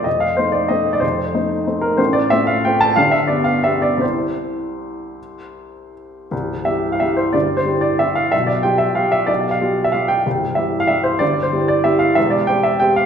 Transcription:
\new Staff \with { instrumentName = "Upright piano" } { \time 3/4 \key c \mixolydian \tempo 4 = 185 << { ees''8 f''8 c''8 d''8 ees''8. d''16 | c''2 r8 bes'8 | \key c \major c''8 d''8 e''8 f''8 g''8 a''8 | f''8 e''8 d''8 f''8 e''8 d''8 |
c''2.~ | c''2 r4 | r4 e''8. f''16 e''8 c''8 | d''8. c''8. d''8 e''8 f''8 |
e''8 d''8 g''8 e''8 f''8 e''8 | d''8. f''4 e''16 f''8 g''8 | r4 e''8. f''16 e''8 c''8 | d''8. c''8. d''8 e''8 f''8 |
e''8 d''8 g''8 e''8 g''8 f''8 | } \\ { <f,, f,>4 <a c' ees'>4 <a c' ees'>4 | <f,, f,>4 <a c' ees'>4 <a c' ees'>4 | <a,, a,>4 <a c' f'>4 <a c' f'>4 | <g,, g,>4 <b d' g'>4 <b d' g'>4 |
<c, c' e' g'>2.~ | <c, c' e' g'>2. | <c,, c,>4 <g e' g'>4 <g e' g'>4 | <g,, g,>4 <g e' g'>4 <g e' g'>4 |
<b,, b,>4 <g f' g'>4 <g f' g'>4 | <b,, b,>4 <g f' g'>4 <g f' g'>4 | <c,, c,>4 <g e' g'>4 <g e' g'>4 | <g,, g,>4 <g e' g'>4 <g e' g'>4 |
<e,, e,>4 <g c' g'>4 <g c' g'>4 | } >> }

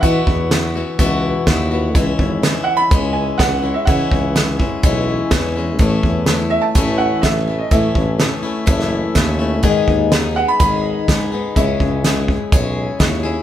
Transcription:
<<
  \new Staff \with { instrumentName = "Upright piano" } { \time 4/4 \key cis \minor \tempo 4 = 125 fis''2. r4 | r4. fis''16 b''8. gis''8 fis''8. e''16 | fis''2. r4 | r4. e''16 a''8. fis''8 e''8. dis''16 |
e''2. r4 | r4. fis''16 b''16 b''2 | e''2. r4 | }
  \new Staff \with { instrumentName = "Steel-string acoustic guitar" } { \time 4/4 \key cis \minor <e, b, e b e' fis'>4 <e b e' fis'>8 <e b e' fis'>8 <e, b, e b e' fis'>4 <e b e' fis'>8 <e b e' fis'>8 | <cis e gis cis' e'>4 <e gis cis' e'>4 <cis e gis cis' e'>4 <e gis cis' e'>8 <gis cis' e'>8 | <cis e gis cis' e'>4 <e gis cis' e'>8 <gis cis' e'>8 <cis e gis cis' e'>4 <e gis cis' e'>8 <gis cis' e'>8 | <a, e a cis' e'>4 <e a cis' e'>4 <a, e a cis' e'>4 <e a cis' e'>8 <a cis' e'>8 |
<a, e a cis' e'>4 <e a cis' e'>8 <a cis' e'>8 <a, e a cis' e'>4 <e a cis' e'>8 <a cis' e'>8 | <gis, dis gis b dis' gis'>4 <gis b dis' gis'>8 <gis b dis' gis'>8 <gis, dis gis b dis' gis'>4 <gis b dis' gis'>8 <gis b dis' gis'>8 | <cis gis cis' e' gis'>4 <gis cis' e' gis'>4 <cis gis cis' e' gis'>4 <gis cis' e' gis'>8 <cis' e' gis'>8 | }
  \new Staff \with { instrumentName = "Tuba" } { \clef bass \time 4/4 \key cis \minor e8 e,4. cis,4 dis,4 | cis,8 gis,,4 r8 cis,4 cis,4 | cis8 cis,4. b,,4 e,4 | a,,8 e,4. a,,4 a,,4 |
a,8 a,,4 r8 fis,,4 dis,4 | gis,,8 dis,4. gis,,4 gis,4 | cis,8 cis,4. b,,4 dis,4 | }
  \new DrumStaff \with { instrumentName = "Drums" } \drummode { \time 4/4 <hh bd>8 bd8 <hh sn>4 <hh bd>4 <hh bd sn>4 | <hh bd>8 bd8 <hh sn>4 <hh bd>4 <hh bd sn>4 | <hh bd>8 bd8 <hh sn>8 bd8 <hh bd>4 <hh bd sn>4 | <hh bd>8 bd8 <hh sn>4 <hh bd>4 <hh bd sn>4 |
<hh bd>8 bd8 <hh sn>4 <hh bd>16 sn8. <hh bd sn>4 | <hh bd>8 bd8 <hh sn>4 <hh bd>4 <hh bd sn>4 | <hh bd>8 bd8 <hh sn>8 bd8 <hh bd>4 <hh bd sn>4 | }
>>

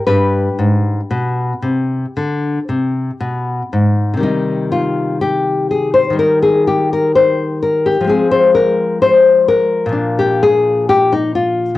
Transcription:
\new Staff \with { instrumentName = "Nylon-string guitar" } { \time 4/4 \key c \minor \tempo 4 = 62 << { <g' b'>2. r4 | ees'8 f'8 g'8 aes'16 c''16 bes'16 aes'16 g'16 bes'16 c''8 bes'16 g'16 | aes'16 c''16 bes'8 c''8 bes'8. g'16 aes'8 g'16 ees'16 f'8 | } \\ { g,8 aes,8 b,8 c8 d8 c8 b,8 aes,8 | <c ees g>2 <ees g>2 | <f aes c'>2 <bes, f d'>2 | } >> }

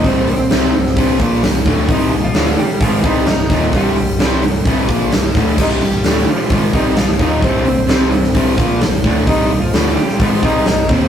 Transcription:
<<
  \new Staff \with { instrumentName = "Clean electric guitar" } { \time 4/4 \key c \minor \tempo 4 = 130 <c' c''>8 <c' c''>2 r4. | <ees' ees''>8. <f f'>8. <g g'>8 <f f'>8 <ees' ees''>8 <ees' ees''>4 | <g g'>4 r2. | <ees' ees''>8 <g g'>4 <f f'>4 <ees' ees''>8 <f f'>8 <ees' ees''>8 |
<c' c''>8 <c' c''>2 r4. | <ees' ees''>8. <f f'>8. <g g'>8 <f f'>8 <ees' ees''>8 <ees' ees''>8 <c' c''>8 | }
  \new Staff \with { instrumentName = "Distorted electric guitar" } { \clef bass \time 4/4 \key c \minor <c, g, c>8 <c, g,>8 <c g c'>8 <c, g,>8 <c, g, c>8 <bes, f bes>8 <c, g,>8 <d, a, d>8 | <c, g, c>8 <c, g,>8 <d, a, d>8 r8 <aes, ees aes>8 <c g c'>8 <c, g,>8 <ees, bes, ees>8 | <c, g, c>8 <c, g,>8 <c g c'>8 <c, g,>8 <c, g, c>8 <bes, f bes>8 <c, g,>8 <d, a, d>8 | <c, g, c>8 <c, g,>8 <d, a, d>8 r8 <aes, ees aes>8 <c g c'>8 <c, g,>8 <ees, bes, ees>8 |
<c, g, c>8 <c, g,>8 <c g c'>8 <c, g,>8 <c, g, c>8 <bes, f bes>8 <c, g,>8 <d, a, d>8 | <c, g, c>8 <c, g,>8 <d, a, d>8 r8 <aes, ees aes>8 <c g c'>8 <c, g,>8 <ees, bes, ees>8 | }
  \new Staff \with { instrumentName = "Distorted electric guitar" } { \clef bass \time 4/4 \key c \minor <c, g, c>8 <c, g,>8 <c g c'>8 <c, g,>8 <c, g, c>8 <bes, f bes>8 <c, g,>8 <d, a, d>8 | <c, g, c>8 <c, g,>8 <d, a, d>8 r8 <aes, ees aes>8 <c g c'>8 <c, g,>8 <ees, bes, ees>8 | <c, g, c>8 <c, g,>8 <c g c'>8 <c, g,>8 <c, g, c>8 <bes, f bes>8 <c, g,>8 <d, a, d>8 | <c, g, c>8 <c, g,>8 <d, a, d>8 r8 <aes, ees aes>8 <c g c'>8 <c, g,>8 <ees, bes, ees>8 |
<c, g, c>8 <c, g,>8 <c g c'>8 <c, g,>8 <c, g, c>8 <bes, f bes>8 <c, g,>8 <d, a, d>8 | <c, g, c>8 <c, g,>8 <d, a, d>8 r8 <aes, ees aes>8 <c g c'>8 <c, g,>8 <ees, bes, ees>8 | }
  \new Staff \with { instrumentName = "Picked electric bass" } { \clef bass \time 4/4 \key c \minor c,,8 c,,8 c,8 c,,8 c,,8 bes,,8 c,,8 d,,8 | c,,8 c,,8 d,,8 r8 aes,,8 c,8 c,,8 ees,,8 | c,,8 c,,8 c,8 c,,8 c,,8 bes,,8 c,,8 d,,8 | c,,8 c,,8 d,,8 r8 aes,,8 c,8 c,,8 ees,,8 |
c,,8 c,,8 c,8 c,,8 c,,8 bes,,8 c,,8 d,,8 | c,,8 c,,8 d,,8 r8 aes,,8 c,8 c,,8 ees,,8 | }
  \new DrumStaff \with { instrumentName = "Drums" } \drummode { \time 4/4 <hho bd>8 hho8 <hho sn>8 hho16 sn16 <hho bd>8 <hho bd>8 <hho sn>8 <hho bd>8 | <hho bd>8 hho8 <hho sn>8 hho8 <hho bd>8 <hho bd>8 <hho sn>8 <hho bd sn>8 | <hho bd>8 hho8 <hho sn>8 hho8 <hho bd>8 <hho bd>8 <hho sn>8 <hho bd sn>8 | <cymc bd>8 hho8 <hho sn>8 hho8 <hho bd>8 <hho bd>8 <hho sn>8 <hho bd>8 |
<hho bd>8 hho8 <hho sn>8 hho16 sn16 <hho bd>8 <hho bd>8 <hho sn>8 <hho bd>8 | <hho bd>8 hho8 <hho sn>8 hho16 sn16 <hho bd>8 <hho bd>8 <hho sn>8 <hho bd sn>8 | }
>>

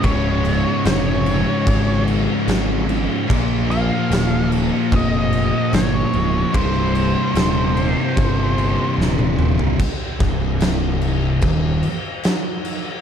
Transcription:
<<
  \new Staff \with { instrumentName = "Lead electric guitar" } { \time 4/4 \key c \phrygian \tempo 4 = 74 des''4 des''4. r4. | r8 f''4 r8 ees''4 des''4 | c''2. r4 | r1 | }
  \new Staff \with { instrumentName = "Distorted electric guitar" } { \clef bass \time 4/4 \key c \phrygian <des, aes, des>1 | <bes, f bes>1 | <c, g, c>1 | r1 | }
  \new Staff \with { instrumentName = "Distorted electric guitar" } { \clef bass \time 4/4 \key c \phrygian <des, aes, des>2.~ <des, aes, des>8 <des, aes, des>8 | <bes, f bes>2.~ <bes, f bes>8 <bes, f bes>8 | <c, g, c>2.~ <c, g, c>8 <c, g, c>8 | r8 c,4. ees,8 r4. | }
  \new Staff \with { instrumentName = "Distorted electric guitar" } { \clef bass \time 4/4 \key c \phrygian <des, aes, des>1 | <bes, f bes>1 | <c, g, c>1 | r8 c,4. ees,8 r4. | }
  \new Staff \with { instrumentName = "Picked electric bass" } { \clef bass \time 4/4 \key c \phrygian des,,4 f,,4 aes,,4 aes,,4 | bes,,4 ees,,4 f,,4 g,,8 des,,8 | c,,4 ees,,4 g,,4 ees,,4 | r8 c,,4. ees,,8 r4. | }
  \new DrumStaff \with { instrumentName = "Drums" } \drummode { \time 4/4 <cymc bd>8 cymc8 <cymc sn>8 cymc8 <cymc bd>8 cymc8 <cymc sn>8 cymc8 | <cymc bd>8 cymc8 <cymc sn>8 cymc8 <cymc bd>8 cymc8 <cymc sn>8 cymc8 | <cymc bd>8 cymc8 <cymc sn>8 cymc8 <cymc bd>8 cymc8 sn16 tommh16 toml16 tomfh16 | <cymc bd>8 <cymc bd sn>8 <cymc sn>8 cymc8 <cymc bd>8 cymc8 <cymc sn>8 cymc8 | }
>>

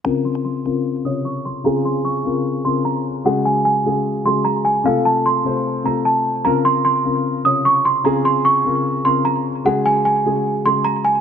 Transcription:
<<
  \new Staff \with { instrumentName = "Celesta" } { \time 4/4 \key bes \minor \tempo 4 = 150 bes''8 c'''8 c'''4. ees'''8 des'''8 c'''8 | bes''8 c'''8 des'''4. c'''8 bes''8 r8 | ges''8 aes''8 aes''4. c'''8 bes''8 aes''8 | f''8 a''8 c'''4. bes''8 a''4 |
bes''8 c'''8 c'''4. ees'''8 des'''8 c'''8 | bes''8 c'''8 des'''4. c'''8 bes''8 r8 | ges''8 aes''8 aes''4. c'''8 bes''8 aes''8 | }
  \new Staff \with { instrumentName = "Grand piano" } { \time 4/4 \key bes \minor <des c' f' bes'>4 r8 <des c' f' bes'>8 r8 <c des f' des''>4 r8 | <des c' f' aes'>4 r8 <des c' f' bes'>8 r8 <des c' f' bes'>4 r8 | <des aes ges' aes'>4 r8 <des aes ges' aes'>8 r8 <des aes ges' aes'>4 r8 | <c a f' a'>4 r8 <c a f' c''>8 r8 <c a f' a'>4 r8 |
<des c' f' bes'>4 r8 <des c' f' bes'>8 r8 <c des f' des''>4 r8 | <des c' f' aes'>4 r8 <des c' f' bes'>8 r8 <des c' f' bes'>4 r8 | <des aes ges' aes'>4 r8 <des aes ges' aes'>8 r8 <des aes ges' aes'>4 r8 | }
>>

